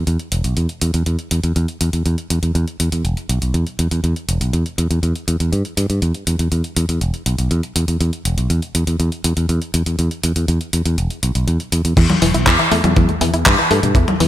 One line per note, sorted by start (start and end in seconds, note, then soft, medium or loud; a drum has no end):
0.07 0.16 E2 medium
0.07 closed hi-hat soft
0.19 closed hi-hat soft
0.32 0.41 E1 medium
0.32 closed hi-hat medium
0.44 0.54 B1 medium
0.44 closed hi-hat soft
0.57 0.66 E2 medium
0.57 closed hi-hat soft
0.69 closed hi-hat soft
0.81 0.91 E2 medium
0.81 closed hi-hat medium
0.94 1.03 E2 medium
0.94 closed hi-hat soft
1.06 1.16 E2 medium
1.06 closed hi-hat soft
1.19 closed hi-hat soft
1.31 1.40 E2 medium
1.31 closed hi-hat medium
1.44 1.53 E2 medium
1.44 closed hi-hat soft
1.56 1.65 E2 medium
1.56 closed hi-hat soft
1.68 closed hi-hat soft
1.81 1.90 E2 medium
1.81 closed hi-hat medium
1.93 2.02 E2 medium
1.93 closed hi-hat soft
2.06 2.15 E2 medium
2.06 closed hi-hat soft
2.18 closed hi-hat soft
2.30 2.39 E2 medium
2.30 closed hi-hat medium
2.43 2.52 E2 medium
2.43 closed hi-hat soft
2.55 2.64 E2 loud
2.55 closed hi-hat soft
2.68 closed hi-hat soft
2.80 2.89 E2 medium
2.80 closed hi-hat medium
2.92 3.01 E2 medium
2.92 closed hi-hat soft
3.05 3.14 E1 medium
3.05 closed hi-hat soft
3.17 closed hi-hat soft
3.29 3.39 B1 medium
3.29 closed hi-hat medium
3.42 3.51 B1 medium
3.42 closed hi-hat soft
3.54 3.63 E2 medium
3.54 closed hi-hat soft
3.67 closed hi-hat soft
3.79 3.88 E2 medium
3.79 closed hi-hat medium
3.91 4.01 E2 medium
3.91 closed hi-hat soft
4.04 4.13 E2 medium
4.04 closed hi-hat soft
4.16 closed hi-hat soft
4.28 4.38 E1 medium
4.28 closed hi-hat medium
4.41 4.50 B1 medium
4.41 closed hi-hat soft
4.53 4.62 E2 medium
4.53 closed hi-hat soft
4.66 closed hi-hat soft
4.78 4.87 E2 medium
4.78 closed hi-hat medium
4.90 5.00 E2 medium
4.90 closed hi-hat soft
5.03 5.12 E2 medium
5.03 closed hi-hat soft
5.15 closed hi-hat soft
5.28 5.37 E2 medium
5.28 closed hi-hat medium
5.40 5.49 E2 medium
5.40 closed hi-hat soft
5.52 5.62 G2 medium
5.52 closed hi-hat soft
5.65 closed hi-hat soft
5.77 5.86 G2 medium
5.77 closed hi-hat medium
5.90 5.99 G2 medium
5.90 closed hi-hat soft
6.02 6.11 E2 medium
6.02 closed hi-hat soft
6.14 closed hi-hat soft
6.27 6.36 E2 medium
6.27 closed hi-hat medium
6.39 6.48 E2 medium
6.39 closed hi-hat soft
6.52 6.61 E2 medium
6.52 closed hi-hat soft
6.64 closed hi-hat soft
6.76 6.86 E2 medium
6.76 closed hi-hat medium
6.89 6.98 E2 medium
6.89 closed hi-hat soft
7.01 7.11 E1 medium
7.01 closed hi-hat soft
7.14 closed hi-hat soft
7.26 7.35 B1 medium
7.26 closed hi-hat medium
7.38 7.48 B1 medium
7.38 closed hi-hat soft
7.51 7.60 E2 medium
7.51 closed hi-hat soft
7.63 closed hi-hat soft
7.76 7.85 E2 medium
7.76 closed hi-hat medium
7.88 7.97 E2 medium
7.88 closed hi-hat soft
8.01 8.10 E2 medium
8.01 closed hi-hat medium
8.13 closed hi-hat soft
8.25 8.34 E1 medium
8.25 closed hi-hat medium
8.38 8.47 B1 medium
8.38 closed hi-hat soft
8.50 8.59 E2 loud
8.50 closed hi-hat medium
8.62 closed hi-hat soft
8.75 8.84 E2 medium
8.75 closed hi-hat medium
8.87 8.96 E2 medium
8.87 closed hi-hat medium
9.00 9.09 E2 medium
9.00 closed hi-hat soft
9.12 closed hi-hat soft
9.24 9.34 E2 medium
9.24 closed hi-hat medium
9.37 9.46 E2 medium
9.37 closed hi-hat soft
9.49 9.58 E2 loud
9.49 closed hi-hat soft
9.62 closed hi-hat soft
9.74 9.83 E2 medium
9.74 closed hi-hat medium
9.86 9.96 E2 medium
9.86 closed hi-hat soft
9.99 10.08 E2 medium
9.99 closed hi-hat medium
10.11 closed hi-hat soft
10.23 10.33 E2 medium
10.23 closed hi-hat medium
10.36 10.45 E2 medium
10.36 closed hi-hat medium
10.48 10.58 E2 loud
10.48 closed hi-hat medium
10.61 closed hi-hat soft
10.73 10.82 E2 medium
10.73 closed hi-hat medium
10.86 10.95 E2 medium
10.86 closed hi-hat medium
10.98 11.07 E1 loud
10.98 closed hi-hat soft
11.10 closed hi-hat soft
11.23 11.32 B1 medium
11.23 closed hi-hat medium
11.35 11.44 B1 medium
11.35 closed hi-hat soft
11.47 11.57 E2 loud
11.47 closed hi-hat soft
11.60 closed hi-hat soft
11.72 11.81 E2 medium
11.72 closed hi-hat medium
11.85 11.94 E2 medium
11.85 closed hi-hat medium
11.97 12.06 E2 loud
11.97 12.03 E3 medium
11.97 kick loud
11.97 closed hi-hat medium
11.97 crash loud
12.10 12.19 E2 medium
12.10 closed hi-hat soft
12.10 high tom medium
12.22 12.31 E1 loud
12.22 12.32 E3 loud
12.22 open hi-hat loud
12.34 12.44 B1 medium
12.34 12.44 E4 medium
12.34 closed hi-hat medium
12.47 12.56 E2 loud
12.47 12.53 E3 medium
12.47 kick loud
12.47 clap loud
12.47 closed hi-hat medium
12.59 12.71 E3 medium
12.59 closed hi-hat soft
12.72 12.81 E2 medium
12.72 12.81 A3 loud
12.72 open hi-hat loud
12.84 12.93 E2 medium
12.84 12.90 B2 medium
12.84 closed hi-hat medium
12.84 high tom medium
12.96 13.06 E2 loud
12.96 13.02 E3 medium
12.96 kick loud
12.96 closed hi-hat medium
13.09 13.18 E2 medium
13.09 closed hi-hat soft
13.21 13.30 E2 loud
13.21 13.31 E3 loud
13.21 open hi-hat loud
13.33 13.43 E2 medium
13.33 13.43 E4 medium
13.33 closed hi-hat medium
13.46 13.55 G2 loud
13.46 13.52 E3 medium
13.46 kick loud
13.46 clap loud
13.46 closed hi-hat medium
13.58 13.70 E3 medium
13.58 closed hi-hat soft
13.71 13.80 G2 medium
13.71 13.80 A3 loud
13.71 open hi-hat medium
13.83 13.92 G2 medium
13.83 13.89 B2 medium
13.83 closed hi-hat medium
13.95 14.04 E2 loud
13.95 14.01 E3 medium
13.95 kick loud
13.95 closed hi-hat medium
14.08 14.18 E2 medium
14.08 closed hi-hat soft
14.08 high tom medium
14.20 14.28 E2 medium
14.20 14.28 E3 loud
14.20 open hi-hat loud